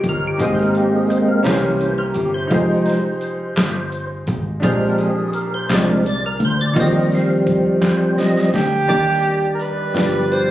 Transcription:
Already playing: D#3 D#4 F4 G4 C5 C#5
0.03 G1, kick, closed hi-hat
0.09 A#4
0.28 G4
0.38 G#1 G#2 D#4 G4 G#4 A#4 C5, kick, closed hi-hat
0.42 G#3 A#3 C4 G#4
0.55 C5
0.59 A#4
0.75 G4, closed hi-hat
0.95 G#4
1.10 C5, closed hi-hat
1.28 A#4
1.43 C2 C3 E3 A#3 C#4 E4 G4 A#4 B4 C5, snare, clap, closed hi-hat
1.52 C5
1.61 A#4
1.80 C5, closed hi-hat
1.98 A#4
2.14 G1 G4, closed hi-hat
2.34 C5
2.47 F1 F3 G#3 D#4 F4 G4, kick, closed hi-hat
2.52 D#4 G#4 C5
2.86 snare, closed hi-hat
3.21 closed hi-hat
3.56 G1, snare, clap, closed hi-hat
3.92 closed hi-hat
4.27 G#1, kick, closed hi-hat
4.60 A#1 A#2 F3 C4 D4 G4 G#4, kick, closed hi-hat
4.64 G#3 D4 A#4 C5
4.98 G#4, closed hi-hat
5.33 A#4, closed hi-hat
5.54 C5
5.70 C2 F3 G#3 C4 D4 D5, snare, clap, closed hi-hat
5.89 A#4
6.06 D5, closed hi-hat
6.26 A#4
6.40 D2, closed hi-hat
6.45 C5
6.61 D5
6.74 D#2 D#3 D#4 F4 F#4, kick, closed hi-hat
6.78 F3 G3 C4 A#4 C5 D#5
6.83 G4
7.12 F5, snare, closed hi-hat
7.47 kick, closed hi-hat
7.81 F2 C5, snare, clap, closed hi-hat
8.17 F3 G3 C4 D#5, snare, closed hi-hat
8.37 snare
8.54 D2 G4, snare, closed hi-hat
8.88 D#2 D#3 G3 D4 D#4 G4 D5 A#5, kick, closed hi-hat
9.25 closed hi-hat
9.54 A#4
9.60 B4, closed hi-hat
9.93 G1 G2 B2 F3 D4 F4 G4 A#4 D5, snare, closed hi-hat
10.02 B5
10.32 C5, closed hi-hat

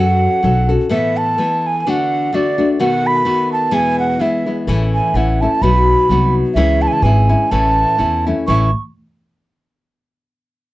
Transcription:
Already playing: F#2 F#3 C#4 F#4 A4 F#5
0.43 B1 F#3 C#4 F#4 A4
0.69 C#4 F#4 A4
0.89 A2 E3 A3 B3 A4 E5
1.17 A5
1.38 E3 A3 B3 A4
1.67 G#5
1.80 G#5
1.87 D3 A3 D4 F#4 F#5
2.33 D3 A3 D4 F#4 D5
2.58 A3 D4 F#4
2.80 B2 D#3 A3 B3 F#4 F#5
3.07 B5
3.25 D#3 A3 B3 F#4
3.52 A5
3.71 E2 B2 E3 G#3 B3 E4 G#5
3.99 F#5
4.19 E3 G#3 B3 E4 E5
4.46 E3 G#3 B3 E4
4.67 A1 A2 E3 A3 C#4 E4
4.94 G#5
5.14 A1 E3 A3 C#4 E4 F#5
5.41 A3 C#4 E4 A5
5.62 B1 B2 F#3 B3 D#4 F#4 B5
6.09 C2 F#3 B3 D#4 F#4
6.54 C#2 C#3 E3 G#3 C#4 E4 E5
6.82 A5
6.87 G#5
6.93 A5
7.02 G#1 E3 G#3 C#4 E4 G#5
7.29 G#3 C#4 E4
7.51 A1 A2 E3 A3 C#4 E4 A5
7.98 E2 E3 A3 C#4 E4
8.27 A3 C#4 E4
8.47 A1 A2 E3 A3 C#4 E4 C#6

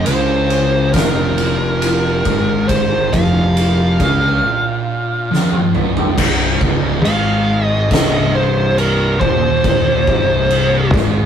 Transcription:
0.05 C#2 C#3 C5, ride
0.50 ride
0.93 F1 F2 A#4, kick, snare, ride
1.38 ride
1.82 ride
2.25 G#1 G#2, kick, ride
2.68 C5, kick, ride
3.12 F1 F2 F5, kick, ride
3.57 ride
4.00 C#2 C#3, kick, ride
4.43 A#2
5.31 F2, snare
5.52 high tom
5.74 F#2, mid tom
5.97 floor tom
6.17 C1 C2, kick, crash
6.60 C#1 C#2, kick
7.04 G#1 G#2 F5, crash
7.64 D#5
7.91 C1 C2 D#5, kick, snare, crash
8.35 C5
8.78 A#4, crash
9.20 D#1 D#2 C5, kick
9.64 kick, crash
10.07 C1 C2, kick
10.51 crash
10.93 G#1 G#2, kick, snare

